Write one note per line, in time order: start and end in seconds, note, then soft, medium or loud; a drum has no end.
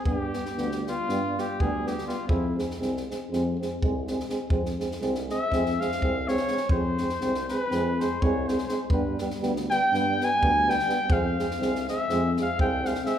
0.05 0.34 G2 medium
0.05 0.17 G3 medium
0.05 0.17 B3 medium
0.05 0.17 G#4 medium
0.05 kick medium
0.17 0.82 G4 medium
0.33 0.43 G3 medium
0.33 0.43 B3 medium
0.33 snare soft
0.45 snare soft
0.56 0.86 D2 medium
0.56 0.69 G3 medium
0.56 0.68 B3 medium
0.56 snare soft
0.72 snare soft
0.86 0.95 G3 medium
0.86 0.96 B3 medium
0.86 1.41 F4 loud
0.86 snare soft
1.09 1.37 G2 medium
1.09 1.21 G3 medium
1.09 1.20 B3 medium
1.09 snare soft
1.36 1.46 G3 medium
1.36 1.46 B3 medium
1.36 1.62 G4 medium
1.36 snare soft
1.59 1.98 D2 medium
1.59 1.70 G3 medium
1.59 1.70 B3 medium
1.59 1.89 G#4 medium
1.59 kick medium
1.84 1.94 G3 medium
1.84 1.93 B3 medium
1.84 2.06 G4 medium
1.84 snare soft
1.98 snare soft
2.07 2.15 G3 medium
2.07 2.16 B3 medium
2.07 2.27 F4 medium
2.07 snare soft
2.28 2.58 F2 loud
2.28 2.40 G#3 medium
2.28 2.39 C4 medium
2.28 2.55 E4 medium
2.28 kick loud
2.56 2.66 G#3 medium
2.56 2.65 C4 medium
2.56 snare soft
2.70 snare soft
2.80 3.08 C2 medium
2.80 2.91 G#3 medium
2.80 2.91 C4 medium
2.80 snare soft
2.97 snare soft
3.09 3.18 G#3 medium
3.09 3.19 C4 medium
3.09 snare soft
3.30 3.59 F2 loud
3.30 3.42 G#3 medium
3.30 3.42 C4 medium
3.30 snare soft
3.59 3.69 G#3 medium
3.59 3.68 C4 medium
3.59 snare soft
3.82 4.20 C2 medium
3.82 3.93 G#3 medium
3.82 3.92 C4 medium
3.82 kick medium
4.07 4.17 G#3 medium
4.07 4.17 C4 medium
4.07 snare soft
4.20 snare soft
4.29 4.38 G#3 medium
4.29 4.37 C4 medium
4.29 snare soft
4.49 4.78 F2 medium
4.49 4.63 G#3 medium
4.49 4.61 C4 medium
4.49 kick loud
4.65 snare soft
4.79 4.88 G#3 medium
4.79 4.88 C4 soft
4.79 snare soft
4.91 snare soft
5.01 5.29 C2 medium
5.01 5.13 G#3 medium
5.01 5.13 C4 medium
5.01 snare soft
5.15 snare soft
5.29 5.38 G#3 medium
5.29 5.39 C4 soft
5.29 5.82 E5 loud
5.29 snare soft
5.51 5.80 F2 medium
5.51 5.63 G#3 medium
5.51 5.63 C4 medium
5.51 kick medium
5.51 snare soft
5.66 snare soft
5.80 5.90 G#3 medium
5.80 5.89 C4 medium
5.80 6.30 F5 loud
5.80 snare soft
5.92 snare soft
6.01 6.39 C2 medium
6.01 6.13 G#3 medium
6.01 6.11 C4 medium
6.01 kick medium
6.27 6.37 G#3 medium
6.27 6.36 C4 medium
6.27 6.70 C#5 medium
6.27 snare soft
6.37 snare soft
6.48 6.59 G#3 soft
6.48 6.58 C4 soft
6.48 snare soft
6.57 snare soft
6.69 6.98 F2 loud
6.69 6.83 G#3 medium
6.69 6.82 C4 medium
6.69 7.46 C5 medium
6.69 kick loud
6.98 7.09 G#3 medium
6.98 7.08 C4 soft
6.98 snare soft
7.09 snare soft
7.20 7.49 C2 medium
7.20 7.34 G#3 medium
7.20 7.32 C4 medium
7.20 snare soft
7.34 snare soft
7.48 7.61 G#3 medium
7.48 7.58 C4 soft
7.48 8.01 B4 loud
7.48 snare soft
7.69 8.00 F2 loud
7.69 7.81 C4 medium
7.69 snare soft
7.73 7.84 G#3 medium
7.98 8.10 G#3 medium
7.98 8.08 C4 medium
7.98 8.23 C5 medium
7.98 snare soft
8.21 8.60 C2 loud
8.21 8.34 G#3 medium
8.21 8.31 C4 medium
8.21 8.50 C#5 medium
8.21 kick medium
8.48 8.58 G#3 medium
8.48 8.57 C4 medium
8.48 8.67 C5 medium
8.48 snare soft
8.58 snare soft
8.67 8.78 G#3 medium
8.67 8.77 C4 medium
8.67 8.83 C5 medium
8.67 snare soft
8.85 8.92 C5 medium
8.90 9.18 G2 medium
8.90 9.03 G3 medium
8.90 9.02 B3 medium
8.90 9.19 B4 medium
8.90 kick loud
9.18 9.29 G3 medium
9.18 9.28 B3 medium
9.18 snare soft
9.30 snare soft
9.41 9.69 D2 medium
9.41 9.53 G3 medium
9.41 9.53 B3 medium
9.41 snare soft
9.56 snare soft
9.70 9.79 G3 medium
9.70 9.79 B3 medium
9.70 10.26 G5 loud
9.70 snare soft
9.92 10.19 G2 medium
9.92 10.04 G3 medium
9.92 10.04 B3 medium
9.92 snare soft
10.20 10.29 G3 medium
10.20 10.29 B3 medium
10.20 snare soft
10.24 10.72 G#5 loud
10.42 10.79 D2 medium
10.42 10.53 G3 medium
10.42 10.52 B3 medium
10.42 kick medium
10.67 10.76 G3 medium
10.67 10.75 B3 medium
10.67 11.14 G5 loud
10.67 snare soft
10.79 snare soft
10.88 10.96 G3 medium
10.88 10.97 B3 medium
10.88 snare soft
11.08 11.37 F2 loud
11.08 11.21 G#3 medium
11.08 11.20 C4 medium
11.08 kick loud
11.12 11.89 F5 medium
11.37 11.48 G#3 medium
11.37 11.46 C4 medium
11.37 snare soft
11.51 snare soft
11.59 11.87 C2 medium
11.59 11.72 G#3 medium
11.59 11.70 C4 medium
11.59 snare soft
11.75 snare soft
11.86 11.98 G#3 medium
11.86 11.95 C4 medium
11.86 12.35 E5 loud
11.86 snare soft
12.08 12.37 F2 loud
12.08 12.22 G#3 medium
12.08 12.20 C4 medium
12.08 snare soft
12.36 12.48 G#3 medium
12.36 12.45 C4 medium
12.36 snare soft
12.42 12.60 F5 medium
12.59 12.96 C2 loud
12.59 12.70 G#3 medium
12.59 12.69 C4 medium
12.59 12.88 G5 medium
12.59 kick medium
12.83 12.93 G#3 medium
12.83 12.91 C4 medium
12.83 snare soft
12.87 13.06 F5 medium
12.95 snare soft
13.04 13.13 G#3 medium
13.04 13.12 C4 medium
13.04 13.19 E5 medium
13.04 snare soft